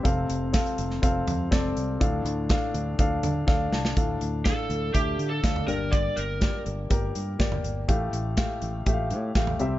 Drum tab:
HH |x-x-xxx-x-x-x-x-|x-x-x-x-x-x-----|x-x-x-x-x-x-x-x-|x-x-x-x-x-x-x-x-|
SD |----o--o----o---|----o-------o-oo|----o-------o---|----o-------o---|
FT |----------o-----|----------o-----|-------------o--|-------------o--|
BD |o---o---o---o---|o---o---o---o---|o---o---o---o---|o---o---o---o---|

HH |x-x-x-x-x-x-x-x-|
SD |----o-------o---|
FT |-------------o--|
BD |o---o---o---o---|